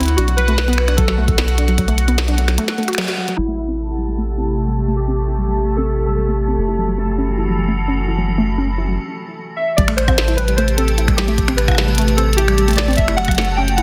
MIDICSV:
0, 0, Header, 1, 8, 480
1, 0, Start_track
1, 0, Tempo, 400000
1, 217, Time_signature, 4, 2, 24, 8
1, 16589, End_track
2, 0, Start_track
2, 0, Title_t, "Synth texture"
2, 0, Program_c, 0, 99
2, 0, Note_on_c, 0, 66, 82
2, 0, Note_on_c, 0, 78, 81
2, 4056, Note_on_c, 0, 81, 79
2, 4057, Note_on_c, 0, 69, 80
2, 4066, Note_off_c, 0, 66, 0
2, 4066, Note_off_c, 0, 78, 0
2, 10776, Note_off_c, 0, 81, 0
2, 10777, Note_off_c, 0, 69, 0
2, 11735, Note_on_c, 0, 81, 83
2, 11736, Note_on_c, 0, 69, 83
2, 16589, Note_off_c, 0, 69, 0
2, 16589, Note_off_c, 0, 81, 0
2, 16589, End_track
3, 0, Start_track
3, 0, Title_t, "Synth keys"
3, 0, Program_c, 1, 88
3, 0, Note_on_c, 1, 64, 91
3, 198, Note_on_c, 1, 66, 102
3, 215, Note_off_c, 1, 64, 0
3, 439, Note_on_c, 1, 71, 107
3, 455, Note_off_c, 1, 66, 0
3, 1120, Note_off_c, 1, 71, 0
3, 1159, Note_on_c, 1, 69, 91
3, 3520, Note_off_c, 1, 69, 0
3, 4038, Note_on_c, 1, 64, 101
3, 5439, Note_off_c, 1, 64, 0
3, 5958, Note_on_c, 1, 67, 86
3, 6918, Note_on_c, 1, 69, 95
3, 6956, Note_off_c, 1, 67, 0
3, 7599, Note_off_c, 1, 69, 0
3, 11478, Note_on_c, 1, 76, 82
3, 11718, Note_on_c, 1, 74, 96
3, 11735, Note_off_c, 1, 76, 0
3, 11830, Note_off_c, 1, 74, 0
3, 11958, Note_on_c, 1, 72, 90
3, 12438, Note_on_c, 1, 71, 87
3, 12462, Note_off_c, 1, 72, 0
3, 12678, Note_on_c, 1, 72, 88
3, 12695, Note_off_c, 1, 71, 0
3, 12919, Note_on_c, 1, 69, 89
3, 12935, Note_off_c, 1, 72, 0
3, 13398, Note_on_c, 1, 67, 97
3, 13422, Note_off_c, 1, 69, 0
3, 13879, Note_on_c, 1, 71, 95
3, 13902, Note_off_c, 1, 67, 0
3, 14560, Note_off_c, 1, 71, 0
3, 14598, Note_on_c, 1, 69, 92
3, 14830, Note_off_c, 1, 69, 0
3, 14838, Note_on_c, 1, 67, 94
3, 15319, Note_on_c, 1, 74, 97
3, 15342, Note_off_c, 1, 67, 0
3, 15550, Note_off_c, 1, 74, 0
3, 15558, Note_on_c, 1, 76, 105
3, 15798, Note_on_c, 1, 78, 110
3, 15815, Note_off_c, 1, 76, 0
3, 16218, Note_on_c, 1, 81, 78
3, 16240, Note_off_c, 1, 78, 0
3, 16277, Note_on_c, 1, 79, 104
3, 16287, Note_off_c, 1, 81, 0
3, 16518, Note_on_c, 1, 78, 106
3, 16535, Note_off_c, 1, 79, 0
3, 16589, Note_off_c, 1, 78, 0
3, 16589, End_track
4, 0, Start_track
4, 0, Title_t, "Ambient pad"
4, 0, Program_c, 2, 92
4, 4056, Note_on_c, 2, 48, 79
4, 4056, Note_on_c, 2, 57, 72
4, 4056, Note_on_c, 2, 67, 91
4, 7858, Note_off_c, 2, 48, 0
4, 7858, Note_off_c, 2, 67, 0
4, 7896, Note_on_c, 2, 52, 83
4, 7897, Note_on_c, 2, 66, 89
4, 10728, Note_off_c, 2, 57, 0
4, 10748, Note_off_c, 2, 52, 0
4, 10748, Note_off_c, 2, 66, 0
4, 11735, Note_on_c, 2, 48, 88
4, 11735, Note_on_c, 2, 67, 98
4, 11736, Note_on_c, 2, 57, 80
4, 15538, Note_off_c, 2, 48, 0
4, 15538, Note_off_c, 2, 67, 0
4, 15576, Note_on_c, 2, 66, 96
4, 15577, Note_on_c, 2, 52, 87
4, 16589, Note_off_c, 2, 52, 0
4, 16589, Note_off_c, 2, 57, 0
4, 16589, Note_off_c, 2, 66, 0
4, 16589, End_track
5, 0, Start_track
5, 0, Title_t, "Synth arpeggio sound"
5, 0, Program_c, 3, 84
5, 216, Note_on_c, 3, 62, 82
5, 303, Note_off_c, 3, 62, 0
5, 336, Note_on_c, 3, 54, 78
5, 423, Note_off_c, 3, 54, 0
5, 456, Note_on_c, 3, 54, 77
5, 571, Note_off_c, 3, 54, 0
5, 576, Note_on_c, 3, 57, 101
5, 628, Note_off_c, 3, 57, 0
5, 816, Note_on_c, 3, 59, 104
5, 868, Note_off_c, 3, 59, 0
5, 1057, Note_on_c, 3, 62, 80
5, 1143, Note_off_c, 3, 62, 0
5, 1176, Note_on_c, 3, 54, 83
5, 1263, Note_off_c, 3, 54, 0
5, 1296, Note_on_c, 3, 54, 77
5, 1411, Note_off_c, 3, 54, 0
5, 1416, Note_on_c, 3, 57, 102
5, 1468, Note_off_c, 3, 57, 0
5, 1656, Note_on_c, 3, 59, 98
5, 1708, Note_off_c, 3, 59, 0
5, 1896, Note_on_c, 3, 62, 76
5, 1983, Note_off_c, 3, 62, 0
5, 2017, Note_on_c, 3, 54, 76
5, 2103, Note_off_c, 3, 54, 0
5, 2137, Note_on_c, 3, 54, 82
5, 2251, Note_off_c, 3, 54, 0
5, 2257, Note_on_c, 3, 57, 102
5, 2308, Note_off_c, 3, 57, 0
5, 2496, Note_on_c, 3, 59, 98
5, 2548, Note_off_c, 3, 59, 0
5, 2736, Note_on_c, 3, 62, 77
5, 2823, Note_off_c, 3, 62, 0
5, 2856, Note_on_c, 3, 54, 73
5, 2943, Note_off_c, 3, 54, 0
5, 2976, Note_on_c, 3, 54, 76
5, 3090, Note_off_c, 3, 54, 0
5, 3096, Note_on_c, 3, 57, 102
5, 3148, Note_off_c, 3, 57, 0
5, 3336, Note_on_c, 3, 57, 74
5, 3451, Note_off_c, 3, 57, 0
5, 3456, Note_on_c, 3, 66, 104
5, 3543, Note_off_c, 3, 66, 0
5, 3576, Note_on_c, 3, 54, 83
5, 3663, Note_off_c, 3, 54, 0
5, 3696, Note_on_c, 3, 66, 77
5, 3748, Note_off_c, 3, 66, 0
5, 3816, Note_on_c, 3, 54, 79
5, 3903, Note_off_c, 3, 54, 0
5, 3936, Note_on_c, 3, 54, 74
5, 4023, Note_off_c, 3, 54, 0
5, 4056, Note_on_c, 3, 55, 77
5, 4170, Note_off_c, 3, 55, 0
5, 4176, Note_on_c, 3, 57, 95
5, 4228, Note_off_c, 3, 57, 0
5, 4416, Note_on_c, 3, 60, 95
5, 4468, Note_off_c, 3, 60, 0
5, 4656, Note_on_c, 3, 64, 75
5, 4742, Note_off_c, 3, 64, 0
5, 4776, Note_on_c, 3, 55, 74
5, 4862, Note_off_c, 3, 55, 0
5, 4895, Note_on_c, 3, 55, 72
5, 5010, Note_off_c, 3, 55, 0
5, 5015, Note_on_c, 3, 57, 100
5, 5068, Note_off_c, 3, 57, 0
5, 5255, Note_on_c, 3, 60, 93
5, 5308, Note_off_c, 3, 60, 0
5, 5496, Note_on_c, 3, 64, 78
5, 5582, Note_off_c, 3, 64, 0
5, 5615, Note_on_c, 3, 55, 71
5, 5702, Note_off_c, 3, 55, 0
5, 5735, Note_on_c, 3, 55, 75
5, 5850, Note_off_c, 3, 55, 0
5, 5855, Note_on_c, 3, 57, 94
5, 5908, Note_off_c, 3, 57, 0
5, 6095, Note_on_c, 3, 60, 95
5, 6148, Note_off_c, 3, 60, 0
5, 6336, Note_on_c, 3, 64, 73
5, 6422, Note_off_c, 3, 64, 0
5, 6456, Note_on_c, 3, 55, 80
5, 6543, Note_off_c, 3, 55, 0
5, 6576, Note_on_c, 3, 55, 74
5, 6690, Note_off_c, 3, 55, 0
5, 6696, Note_on_c, 3, 57, 96
5, 6748, Note_off_c, 3, 57, 0
5, 6936, Note_on_c, 3, 60, 102
5, 6988, Note_off_c, 3, 60, 0
5, 7177, Note_on_c, 3, 64, 72
5, 7263, Note_off_c, 3, 64, 0
5, 7297, Note_on_c, 3, 55, 76
5, 7383, Note_off_c, 3, 55, 0
5, 7417, Note_on_c, 3, 55, 78
5, 7531, Note_off_c, 3, 55, 0
5, 7537, Note_on_c, 3, 57, 91
5, 7589, Note_off_c, 3, 57, 0
5, 7777, Note_on_c, 3, 60, 98
5, 7829, Note_off_c, 3, 60, 0
5, 8018, Note_on_c, 3, 64, 76
5, 8103, Note_off_c, 3, 64, 0
5, 8137, Note_on_c, 3, 54, 76
5, 8223, Note_off_c, 3, 54, 0
5, 8257, Note_on_c, 3, 54, 73
5, 8371, Note_off_c, 3, 54, 0
5, 8377, Note_on_c, 3, 57, 100
5, 8429, Note_off_c, 3, 57, 0
5, 8617, Note_on_c, 3, 61, 96
5, 8669, Note_off_c, 3, 61, 0
5, 8857, Note_on_c, 3, 64, 78
5, 8943, Note_off_c, 3, 64, 0
5, 8976, Note_on_c, 3, 54, 76
5, 9063, Note_off_c, 3, 54, 0
5, 9096, Note_on_c, 3, 54, 74
5, 9211, Note_off_c, 3, 54, 0
5, 9217, Note_on_c, 3, 57, 94
5, 9268, Note_off_c, 3, 57, 0
5, 9456, Note_on_c, 3, 61, 94
5, 9508, Note_off_c, 3, 61, 0
5, 9696, Note_on_c, 3, 64, 73
5, 9783, Note_off_c, 3, 64, 0
5, 9817, Note_on_c, 3, 54, 78
5, 9903, Note_off_c, 3, 54, 0
5, 9936, Note_on_c, 3, 54, 78
5, 10050, Note_off_c, 3, 54, 0
5, 10057, Note_on_c, 3, 57, 101
5, 10108, Note_off_c, 3, 57, 0
5, 10296, Note_on_c, 3, 61, 102
5, 10348, Note_off_c, 3, 61, 0
5, 10536, Note_on_c, 3, 64, 73
5, 10623, Note_off_c, 3, 64, 0
5, 10657, Note_on_c, 3, 54, 77
5, 10743, Note_off_c, 3, 54, 0
5, 11736, Note_on_c, 3, 55, 80
5, 11850, Note_off_c, 3, 55, 0
5, 11856, Note_on_c, 3, 57, 101
5, 11908, Note_off_c, 3, 57, 0
5, 12095, Note_on_c, 3, 60, 101
5, 12148, Note_off_c, 3, 60, 0
5, 12336, Note_on_c, 3, 64, 78
5, 12422, Note_off_c, 3, 64, 0
5, 12456, Note_on_c, 3, 55, 77
5, 12543, Note_off_c, 3, 55, 0
5, 12576, Note_on_c, 3, 55, 78
5, 12690, Note_off_c, 3, 55, 0
5, 12696, Note_on_c, 3, 57, 105
5, 12748, Note_off_c, 3, 57, 0
5, 12937, Note_on_c, 3, 60, 101
5, 12988, Note_off_c, 3, 60, 0
5, 13176, Note_on_c, 3, 64, 82
5, 13263, Note_off_c, 3, 64, 0
5, 13296, Note_on_c, 3, 55, 75
5, 13383, Note_off_c, 3, 55, 0
5, 13416, Note_on_c, 3, 55, 75
5, 13531, Note_off_c, 3, 55, 0
5, 13536, Note_on_c, 3, 57, 104
5, 13588, Note_off_c, 3, 57, 0
5, 13776, Note_on_c, 3, 60, 104
5, 13828, Note_off_c, 3, 60, 0
5, 14016, Note_on_c, 3, 64, 80
5, 14103, Note_off_c, 3, 64, 0
5, 14136, Note_on_c, 3, 55, 84
5, 14223, Note_off_c, 3, 55, 0
5, 14256, Note_on_c, 3, 55, 80
5, 14370, Note_off_c, 3, 55, 0
5, 14376, Note_on_c, 3, 57, 102
5, 14428, Note_off_c, 3, 57, 0
5, 14616, Note_on_c, 3, 60, 105
5, 14668, Note_off_c, 3, 60, 0
5, 14857, Note_on_c, 3, 64, 76
5, 14943, Note_off_c, 3, 64, 0
5, 14977, Note_on_c, 3, 55, 79
5, 15063, Note_off_c, 3, 55, 0
5, 15097, Note_on_c, 3, 55, 82
5, 15211, Note_off_c, 3, 55, 0
5, 15217, Note_on_c, 3, 57, 96
5, 15269, Note_off_c, 3, 57, 0
5, 15457, Note_on_c, 3, 60, 104
5, 15508, Note_off_c, 3, 60, 0
5, 15697, Note_on_c, 3, 64, 80
5, 15783, Note_off_c, 3, 64, 0
5, 15816, Note_on_c, 3, 54, 80
5, 15903, Note_off_c, 3, 54, 0
5, 15936, Note_on_c, 3, 54, 78
5, 16051, Note_off_c, 3, 54, 0
5, 16057, Note_on_c, 3, 57, 104
5, 16108, Note_off_c, 3, 57, 0
5, 16296, Note_on_c, 3, 61, 100
5, 16348, Note_off_c, 3, 61, 0
5, 16536, Note_on_c, 3, 64, 82
5, 16589, Note_off_c, 3, 64, 0
5, 16589, End_track
6, 0, Start_track
6, 0, Title_t, "Analog synth bass"
6, 0, Program_c, 4, 38
6, 0, Note_on_c, 4, 38, 84
6, 193, Note_off_c, 4, 38, 0
6, 216, Note_on_c, 4, 35, 85
6, 3096, Note_off_c, 4, 35, 0
6, 4056, Note_on_c, 4, 33, 82
6, 7872, Note_off_c, 4, 33, 0
6, 7896, Note_on_c, 4, 30, 82
6, 10776, Note_off_c, 4, 30, 0
6, 11736, Note_on_c, 4, 33, 89
6, 15553, Note_off_c, 4, 33, 0
6, 15577, Note_on_c, 4, 30, 88
6, 16589, Note_off_c, 4, 30, 0
6, 16589, End_track
7, 0, Start_track
7, 0, Title_t, "Percussion blips"
7, 12096, Note_on_c, 9, 56, 94
7, 12216, Note_off_c, 9, 56, 0
7, 14018, Note_on_c, 9, 56, 86
7, 14058, Note_off_c, 9, 56, 0
7, 14058, Note_on_c, 9, 56, 67
7, 14097, Note_off_c, 9, 56, 0
7, 14097, Note_on_c, 9, 56, 56
7, 14138, Note_off_c, 9, 56, 0
7, 14138, Note_on_c, 9, 56, 46
7, 14178, Note_off_c, 9, 56, 0
7, 14178, Note_on_c, 9, 56, 37
7, 14218, Note_off_c, 9, 56, 0
7, 14218, Note_on_c, 9, 56, 31
7, 14338, Note_off_c, 9, 56, 0
7, 15936, Note_on_c, 9, 56, 89
7, 16056, Note_off_c, 9, 56, 0
7, 16589, End_track
8, 0, Start_track
8, 0, Title_t, "Drums"
8, 6, Note_on_c, 9, 42, 47
8, 17, Note_off_c, 9, 42, 0
8, 17, Note_on_c, 9, 42, 16
8, 36, Note_off_c, 9, 42, 0
8, 36, Note_on_c, 9, 42, 39
8, 56, Note_off_c, 9, 42, 0
8, 56, Note_on_c, 9, 42, 13
8, 66, Note_off_c, 9, 42, 0
8, 66, Note_on_c, 9, 42, 33
8, 96, Note_off_c, 9, 42, 0
8, 96, Note_on_c, 9, 42, 35
8, 216, Note_off_c, 9, 42, 0
8, 216, Note_on_c, 9, 42, 86
8, 336, Note_off_c, 9, 42, 0
8, 336, Note_on_c, 9, 42, 37
8, 456, Note_off_c, 9, 42, 0
8, 456, Note_on_c, 9, 42, 65
8, 576, Note_off_c, 9, 42, 0
8, 576, Note_on_c, 9, 42, 38
8, 696, Note_off_c, 9, 42, 0
8, 696, Note_on_c, 9, 38, 106
8, 696, Note_on_c, 9, 42, 83
8, 816, Note_off_c, 9, 38, 0
8, 816, Note_off_c, 9, 42, 0
8, 816, Note_on_c, 9, 42, 38
8, 877, Note_off_c, 9, 42, 0
8, 877, Note_on_c, 9, 42, 63
8, 936, Note_on_c, 9, 26, 77
8, 997, Note_off_c, 9, 42, 0
8, 1056, Note_off_c, 9, 26, 0
8, 1056, Note_on_c, 9, 26, 52
8, 1056, Note_on_c, 9, 42, 38
8, 1176, Note_off_c, 9, 26, 0
8, 1176, Note_off_c, 9, 42, 0
8, 1176, Note_on_c, 9, 42, 90
8, 1177, Note_on_c, 9, 36, 112
8, 1296, Note_off_c, 9, 42, 0
8, 1297, Note_off_c, 9, 36, 0
8, 1297, Note_on_c, 9, 38, 58
8, 1417, Note_off_c, 9, 38, 0
8, 1537, Note_on_c, 9, 36, 112
8, 1537, Note_on_c, 9, 42, 38
8, 1657, Note_off_c, 9, 36, 0
8, 1657, Note_off_c, 9, 42, 0
8, 1657, Note_on_c, 9, 38, 108
8, 1657, Note_on_c, 9, 42, 88
8, 1777, Note_off_c, 9, 38, 0
8, 1777, Note_off_c, 9, 42, 0
8, 1777, Note_on_c, 9, 42, 39
8, 1897, Note_off_c, 9, 42, 0
8, 1897, Note_on_c, 9, 42, 62
8, 2017, Note_off_c, 9, 42, 0
8, 2017, Note_on_c, 9, 42, 37
8, 2137, Note_off_c, 9, 42, 0
8, 2137, Note_on_c, 9, 36, 79
8, 2137, Note_on_c, 9, 42, 89
8, 2257, Note_off_c, 9, 36, 0
8, 2257, Note_off_c, 9, 42, 0
8, 2258, Note_on_c, 9, 42, 39
8, 2377, Note_off_c, 9, 42, 0
8, 2377, Note_on_c, 9, 42, 66
8, 2497, Note_off_c, 9, 42, 0
8, 2497, Note_on_c, 9, 42, 40
8, 2617, Note_off_c, 9, 42, 0
8, 2617, Note_on_c, 9, 38, 106
8, 2617, Note_on_c, 9, 42, 89
8, 2737, Note_off_c, 9, 38, 0
8, 2737, Note_off_c, 9, 42, 0
8, 2737, Note_on_c, 9, 42, 39
8, 2857, Note_off_c, 9, 42, 0
8, 2857, Note_on_c, 9, 42, 64
8, 2977, Note_off_c, 9, 42, 0
8, 2977, Note_on_c, 9, 26, 55
8, 2977, Note_on_c, 9, 38, 57
8, 2977, Note_on_c, 9, 42, 38
8, 3097, Note_off_c, 9, 26, 0
8, 3097, Note_off_c, 9, 38, 0
8, 3097, Note_off_c, 9, 42, 0
8, 3097, Note_on_c, 9, 42, 91
8, 3217, Note_off_c, 9, 42, 0
8, 3217, Note_on_c, 9, 38, 60
8, 3217, Note_on_c, 9, 42, 40
8, 3337, Note_off_c, 9, 38, 0
8, 3337, Note_off_c, 9, 42, 0
8, 3337, Note_on_c, 9, 42, 17
8, 3396, Note_off_c, 9, 42, 0
8, 3396, Note_on_c, 9, 42, 22
8, 3457, Note_off_c, 9, 42, 0
8, 3457, Note_on_c, 9, 26, 35
8, 3457, Note_on_c, 9, 42, 38
8, 3517, Note_off_c, 9, 42, 0
8, 3517, Note_on_c, 9, 42, 30
8, 3537, Note_off_c, 9, 26, 0
8, 3537, Note_on_c, 9, 26, 49
8, 3576, Note_off_c, 9, 42, 0
8, 3576, Note_on_c, 9, 38, 115
8, 3576, Note_on_c, 9, 42, 95
8, 3616, Note_off_c, 9, 26, 0
8, 3616, Note_on_c, 9, 26, 66
8, 3696, Note_off_c, 9, 38, 0
8, 3696, Note_off_c, 9, 42, 0
8, 3696, Note_on_c, 9, 42, 41
8, 3736, Note_off_c, 9, 26, 0
8, 3816, Note_off_c, 9, 42, 0
8, 3936, Note_on_c, 9, 42, 38
8, 4056, Note_off_c, 9, 42, 0
8, 11736, Note_on_c, 9, 36, 104
8, 11737, Note_on_c, 9, 42, 67
8, 11856, Note_off_c, 9, 36, 0
8, 11856, Note_off_c, 9, 42, 0
8, 11856, Note_on_c, 9, 26, 83
8, 11856, Note_on_c, 9, 42, 43
8, 11976, Note_off_c, 9, 26, 0
8, 11976, Note_off_c, 9, 42, 0
8, 11976, Note_on_c, 9, 26, 80
8, 11976, Note_on_c, 9, 42, 97
8, 12096, Note_off_c, 9, 26, 0
8, 12096, Note_off_c, 9, 42, 0
8, 12096, Note_on_c, 9, 42, 41
8, 12097, Note_on_c, 9, 36, 104
8, 12216, Note_off_c, 9, 42, 0
8, 12216, Note_on_c, 9, 38, 117
8, 12216, Note_on_c, 9, 42, 67
8, 12217, Note_off_c, 9, 36, 0
8, 12336, Note_off_c, 9, 38, 0
8, 12336, Note_off_c, 9, 42, 0
8, 12337, Note_on_c, 9, 42, 41
8, 12456, Note_off_c, 9, 42, 0
8, 12456, Note_on_c, 9, 42, 99
8, 12576, Note_off_c, 9, 42, 0
8, 12577, Note_on_c, 9, 42, 42
8, 12696, Note_off_c, 9, 42, 0
8, 12696, Note_on_c, 9, 42, 68
8, 12816, Note_off_c, 9, 42, 0
8, 12816, Note_on_c, 9, 42, 42
8, 12936, Note_off_c, 9, 42, 0
8, 12936, Note_on_c, 9, 42, 101
8, 13056, Note_off_c, 9, 42, 0
8, 13056, Note_on_c, 9, 42, 40
8, 13176, Note_off_c, 9, 42, 0
8, 13177, Note_on_c, 9, 42, 70
8, 13297, Note_off_c, 9, 42, 0
8, 13297, Note_on_c, 9, 26, 85
8, 13297, Note_on_c, 9, 36, 103
8, 13297, Note_on_c, 9, 42, 41
8, 13417, Note_off_c, 9, 26, 0
8, 13417, Note_off_c, 9, 36, 0
8, 13417, Note_off_c, 9, 42, 0
8, 13417, Note_on_c, 9, 38, 116
8, 13417, Note_on_c, 9, 42, 95
8, 13537, Note_off_c, 9, 38, 0
8, 13537, Note_off_c, 9, 42, 0
8, 13538, Note_on_c, 9, 42, 41
8, 13657, Note_off_c, 9, 42, 0
8, 13657, Note_on_c, 9, 36, 107
8, 13657, Note_on_c, 9, 42, 67
8, 13777, Note_off_c, 9, 36, 0
8, 13777, Note_off_c, 9, 42, 0
8, 13778, Note_on_c, 9, 26, 82
8, 13778, Note_on_c, 9, 42, 42
8, 13897, Note_off_c, 9, 26, 0
8, 13897, Note_off_c, 9, 42, 0
8, 13897, Note_on_c, 9, 26, 81
8, 13897, Note_on_c, 9, 42, 97
8, 14017, Note_off_c, 9, 26, 0
8, 14017, Note_off_c, 9, 42, 0
8, 14017, Note_on_c, 9, 36, 104
8, 14018, Note_on_c, 9, 26, 65
8, 14018, Note_on_c, 9, 42, 41
8, 14137, Note_off_c, 9, 36, 0
8, 14138, Note_off_c, 9, 26, 0
8, 14138, Note_off_c, 9, 42, 0
8, 14138, Note_on_c, 9, 38, 121
8, 14138, Note_on_c, 9, 42, 66
8, 14258, Note_off_c, 9, 38, 0
8, 14258, Note_off_c, 9, 42, 0
8, 14258, Note_on_c, 9, 42, 19
8, 14338, Note_off_c, 9, 42, 0
8, 14338, Note_on_c, 9, 42, 26
8, 14377, Note_off_c, 9, 42, 0
8, 14377, Note_on_c, 9, 42, 99
8, 14418, Note_off_c, 9, 42, 0
8, 14418, Note_on_c, 9, 42, 32
8, 14497, Note_off_c, 9, 42, 0
8, 14497, Note_on_c, 9, 42, 41
8, 14617, Note_off_c, 9, 42, 0
8, 14617, Note_on_c, 9, 42, 71
8, 14737, Note_off_c, 9, 42, 0
8, 14798, Note_on_c, 9, 42, 42
8, 14858, Note_off_c, 9, 42, 0
8, 14858, Note_on_c, 9, 42, 105
8, 14978, Note_off_c, 9, 42, 0
8, 14978, Note_on_c, 9, 26, 79
8, 14978, Note_on_c, 9, 42, 40
8, 15097, Note_off_c, 9, 42, 0
8, 15097, Note_on_c, 9, 42, 69
8, 15098, Note_off_c, 9, 26, 0
8, 15217, Note_off_c, 9, 42, 0
8, 15218, Note_on_c, 9, 42, 42
8, 15248, Note_off_c, 9, 42, 0
8, 15248, Note_on_c, 9, 42, 34
8, 15278, Note_off_c, 9, 42, 0
8, 15278, Note_on_c, 9, 42, 28
8, 15308, Note_off_c, 9, 42, 0
8, 15308, Note_on_c, 9, 42, 23
8, 15338, Note_off_c, 9, 42, 0
8, 15338, Note_on_c, 9, 26, 53
8, 15338, Note_on_c, 9, 38, 119
8, 15338, Note_on_c, 9, 42, 94
8, 15397, Note_off_c, 9, 42, 0
8, 15397, Note_on_c, 9, 42, 12
8, 15427, Note_off_c, 9, 42, 0
8, 15427, Note_on_c, 9, 42, 10
8, 15457, Note_off_c, 9, 42, 0
8, 15457, Note_on_c, 9, 42, 18
8, 15458, Note_off_c, 9, 26, 0
8, 15458, Note_off_c, 9, 38, 0
8, 15487, Note_off_c, 9, 42, 0
8, 15487, Note_on_c, 9, 42, 23
8, 15517, Note_off_c, 9, 42, 0
8, 15517, Note_on_c, 9, 42, 29
8, 15547, Note_off_c, 9, 42, 0
8, 15547, Note_on_c, 9, 42, 34
8, 15577, Note_off_c, 9, 42, 0
8, 15577, Note_on_c, 9, 36, 107
8, 15577, Note_on_c, 9, 42, 66
8, 15697, Note_off_c, 9, 36, 0
8, 15697, Note_off_c, 9, 42, 0
8, 15697, Note_on_c, 9, 26, 79
8, 15697, Note_on_c, 9, 42, 41
8, 15817, Note_off_c, 9, 26, 0
8, 15817, Note_off_c, 9, 42, 0
8, 15817, Note_on_c, 9, 26, 77
8, 15817, Note_on_c, 9, 42, 43
8, 15896, Note_off_c, 9, 42, 0
8, 15896, Note_on_c, 9, 42, 60
8, 15936, Note_off_c, 9, 42, 0
8, 15936, Note_on_c, 9, 42, 19
8, 15937, Note_off_c, 9, 26, 0
8, 15937, Note_on_c, 9, 36, 106
8, 15976, Note_off_c, 9, 42, 0
8, 15976, Note_on_c, 9, 42, 75
8, 16017, Note_off_c, 9, 42, 0
8, 16017, Note_on_c, 9, 42, 26
8, 16056, Note_off_c, 9, 42, 0
8, 16056, Note_on_c, 9, 38, 124
8, 16056, Note_on_c, 9, 42, 67
8, 16057, Note_off_c, 9, 36, 0
8, 16096, Note_off_c, 9, 42, 0
8, 16096, Note_on_c, 9, 42, 31
8, 16136, Note_off_c, 9, 42, 0
8, 16136, Note_on_c, 9, 42, 34
8, 16176, Note_off_c, 9, 38, 0
8, 16256, Note_off_c, 9, 42, 0
8, 16416, Note_on_c, 9, 42, 39
8, 16536, Note_off_c, 9, 42, 0
8, 16536, Note_on_c, 9, 42, 67
8, 16589, Note_off_c, 9, 42, 0
8, 16589, End_track
0, 0, End_of_file